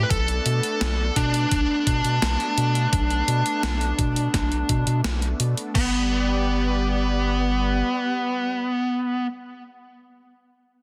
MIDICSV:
0, 0, Header, 1, 6, 480
1, 0, Start_track
1, 0, Key_signature, 1, "major"
1, 0, Tempo, 705882
1, 71, Time_signature, 4, 2, 24, 8
1, 7360, End_track
2, 0, Start_track
2, 0, Title_t, "FM electric piano"
2, 0, Program_c, 0, 5
2, 23, Note_on_c, 0, 71, 81
2, 71, Note_off_c, 0, 71, 0
2, 73, Note_on_c, 0, 69, 115
2, 792, Note_on_c, 0, 62, 95
2, 813, Note_off_c, 0, 69, 0
2, 3404, Note_off_c, 0, 62, 0
2, 3910, Note_on_c, 0, 59, 92
2, 6303, Note_off_c, 0, 59, 0
2, 7360, End_track
3, 0, Start_track
3, 0, Title_t, "Lead electric guitar"
3, 0, Program_c, 1, 29
3, 22, Note_on_c, 1, 71, 84
3, 69, Note_off_c, 1, 71, 0
3, 72, Note_on_c, 1, 69, 111
3, 790, Note_on_c, 1, 62, 90
3, 813, Note_off_c, 1, 69, 0
3, 3403, Note_off_c, 1, 62, 0
3, 3908, Note_on_c, 1, 59, 95
3, 6300, Note_off_c, 1, 59, 0
3, 7360, End_track
4, 0, Start_track
4, 0, Title_t, "Analog synth pad"
4, 0, Program_c, 2, 89
4, 70, Note_on_c, 2, 62, 93
4, 71, Note_on_c, 2, 59, 81
4, 72, Note_on_c, 2, 57, 84
4, 3883, Note_off_c, 2, 62, 0
4, 3884, Note_off_c, 2, 57, 0
4, 3884, Note_off_c, 2, 59, 0
4, 3907, Note_on_c, 2, 71, 80
4, 3908, Note_on_c, 2, 67, 78
4, 3909, Note_on_c, 2, 55, 89
4, 3910, Note_on_c, 2, 74, 97
4, 6300, Note_off_c, 2, 71, 0
4, 6301, Note_off_c, 2, 67, 0
4, 6302, Note_off_c, 2, 55, 0
4, 6302, Note_off_c, 2, 74, 0
4, 7360, End_track
5, 0, Start_track
5, 0, Title_t, "Analog synth bass"
5, 0, Program_c, 3, 38
5, 71, Note_on_c, 3, 35, 101
5, 272, Note_off_c, 3, 35, 0
5, 311, Note_on_c, 3, 47, 95
5, 411, Note_off_c, 3, 47, 0
5, 551, Note_on_c, 3, 35, 86
5, 752, Note_off_c, 3, 35, 0
5, 790, Note_on_c, 3, 47, 96
5, 991, Note_off_c, 3, 47, 0
5, 1031, Note_on_c, 3, 35, 103
5, 1131, Note_off_c, 3, 35, 0
5, 1270, Note_on_c, 3, 47, 97
5, 1371, Note_off_c, 3, 47, 0
5, 1392, Note_on_c, 3, 47, 97
5, 1492, Note_off_c, 3, 47, 0
5, 1511, Note_on_c, 3, 35, 94
5, 1611, Note_off_c, 3, 35, 0
5, 1751, Note_on_c, 3, 47, 79
5, 1952, Note_off_c, 3, 47, 0
5, 1990, Note_on_c, 3, 35, 106
5, 2191, Note_off_c, 3, 35, 0
5, 2230, Note_on_c, 3, 47, 95
5, 2331, Note_off_c, 3, 47, 0
5, 2470, Note_on_c, 3, 35, 88
5, 2671, Note_off_c, 3, 35, 0
5, 2710, Note_on_c, 3, 47, 91
5, 2912, Note_off_c, 3, 47, 0
5, 2950, Note_on_c, 3, 35, 93
5, 3151, Note_off_c, 3, 35, 0
5, 3190, Note_on_c, 3, 47, 106
5, 3291, Note_off_c, 3, 47, 0
5, 3310, Note_on_c, 3, 47, 109
5, 3411, Note_off_c, 3, 47, 0
5, 3431, Note_on_c, 3, 35, 102
5, 3632, Note_off_c, 3, 35, 0
5, 3671, Note_on_c, 3, 47, 86
5, 3771, Note_off_c, 3, 47, 0
5, 3910, Note_on_c, 3, 31, 99
5, 5323, Note_off_c, 3, 31, 0
5, 7360, End_track
6, 0, Start_track
6, 0, Title_t, "Drums"
6, 71, Note_on_c, 9, 36, 116
6, 71, Note_on_c, 9, 42, 76
6, 139, Note_off_c, 9, 36, 0
6, 139, Note_off_c, 9, 42, 0
6, 192, Note_on_c, 9, 42, 37
6, 260, Note_off_c, 9, 42, 0
6, 310, Note_on_c, 9, 42, 76
6, 378, Note_off_c, 9, 42, 0
6, 431, Note_on_c, 9, 42, 52
6, 499, Note_off_c, 9, 42, 0
6, 551, Note_on_c, 9, 38, 110
6, 551, Note_on_c, 9, 42, 79
6, 619, Note_off_c, 9, 38, 0
6, 619, Note_off_c, 9, 42, 0
6, 791, Note_on_c, 9, 36, 61
6, 791, Note_on_c, 9, 42, 83
6, 859, Note_off_c, 9, 36, 0
6, 859, Note_off_c, 9, 42, 0
6, 911, Note_on_c, 9, 42, 57
6, 979, Note_off_c, 9, 42, 0
6, 1030, Note_on_c, 9, 36, 117
6, 1030, Note_on_c, 9, 42, 76
6, 1098, Note_off_c, 9, 36, 0
6, 1098, Note_off_c, 9, 42, 0
6, 1270, Note_on_c, 9, 36, 102
6, 1271, Note_on_c, 9, 42, 77
6, 1338, Note_off_c, 9, 36, 0
6, 1339, Note_off_c, 9, 42, 0
6, 1391, Note_on_c, 9, 42, 54
6, 1459, Note_off_c, 9, 42, 0
6, 1512, Note_on_c, 9, 38, 118
6, 1512, Note_on_c, 9, 42, 75
6, 1580, Note_off_c, 9, 38, 0
6, 1580, Note_off_c, 9, 42, 0
6, 1632, Note_on_c, 9, 42, 37
6, 1700, Note_off_c, 9, 42, 0
6, 1752, Note_on_c, 9, 42, 82
6, 1820, Note_off_c, 9, 42, 0
6, 1872, Note_on_c, 9, 42, 50
6, 1940, Note_off_c, 9, 42, 0
6, 1990, Note_on_c, 9, 36, 116
6, 1991, Note_on_c, 9, 42, 81
6, 2058, Note_off_c, 9, 36, 0
6, 2059, Note_off_c, 9, 42, 0
6, 2111, Note_on_c, 9, 42, 38
6, 2179, Note_off_c, 9, 42, 0
6, 2231, Note_on_c, 9, 42, 80
6, 2299, Note_off_c, 9, 42, 0
6, 2351, Note_on_c, 9, 42, 54
6, 2419, Note_off_c, 9, 42, 0
6, 2470, Note_on_c, 9, 38, 117
6, 2470, Note_on_c, 9, 42, 79
6, 2538, Note_off_c, 9, 38, 0
6, 2538, Note_off_c, 9, 42, 0
6, 2591, Note_on_c, 9, 42, 38
6, 2659, Note_off_c, 9, 42, 0
6, 2710, Note_on_c, 9, 36, 105
6, 2711, Note_on_c, 9, 42, 81
6, 2778, Note_off_c, 9, 36, 0
6, 2779, Note_off_c, 9, 42, 0
6, 2831, Note_on_c, 9, 42, 57
6, 2899, Note_off_c, 9, 42, 0
6, 2950, Note_on_c, 9, 36, 114
6, 2951, Note_on_c, 9, 38, 62
6, 2951, Note_on_c, 9, 42, 84
6, 3018, Note_off_c, 9, 36, 0
6, 3019, Note_off_c, 9, 38, 0
6, 3019, Note_off_c, 9, 42, 0
6, 3071, Note_on_c, 9, 42, 37
6, 3139, Note_off_c, 9, 42, 0
6, 3190, Note_on_c, 9, 42, 80
6, 3191, Note_on_c, 9, 36, 60
6, 3258, Note_off_c, 9, 42, 0
6, 3259, Note_off_c, 9, 36, 0
6, 3311, Note_on_c, 9, 42, 56
6, 3379, Note_off_c, 9, 42, 0
6, 3430, Note_on_c, 9, 38, 120
6, 3430, Note_on_c, 9, 42, 79
6, 3498, Note_off_c, 9, 38, 0
6, 3498, Note_off_c, 9, 42, 0
6, 3551, Note_on_c, 9, 42, 39
6, 3619, Note_off_c, 9, 42, 0
6, 3671, Note_on_c, 9, 42, 87
6, 3739, Note_off_c, 9, 42, 0
6, 3791, Note_on_c, 9, 42, 57
6, 3859, Note_off_c, 9, 42, 0
6, 3910, Note_on_c, 9, 36, 123
6, 3911, Note_on_c, 9, 49, 88
6, 3978, Note_off_c, 9, 36, 0
6, 3979, Note_off_c, 9, 49, 0
6, 7360, End_track
0, 0, End_of_file